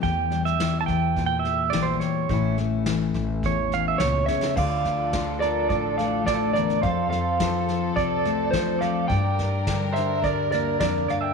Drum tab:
CC |----------------|----------------|x---------------|----------------|
SD |o-ooo-o-o-o-o-o-|o-o-o-o-o-o-o-oo|o-o-o-o-o-o-o-oo|o-o-o-o-o-o-o-o-|
BD |o-----o-o-------|o-----o-o-------|o---o---o---o---|o---o---o---o---|

CC |----------------|
SD |o-o-o-o-o-o-o-o-|
BD |o---o---o---o---|